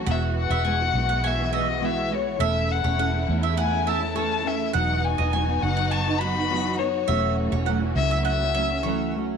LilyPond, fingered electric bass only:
\new Staff \with { instrumentName = "Fingered electric bass" } { \clef bass \time 4/4 \key e \major \tempo 4 = 102 e,,8. e,,8. b,,2~ b,,8 | e,,8. e,,8. e,2~ e,8 | e,,8. e,,8. fis,,2~ fis,,8 | e,,8. e,,8. cis,2~ cis,8 | }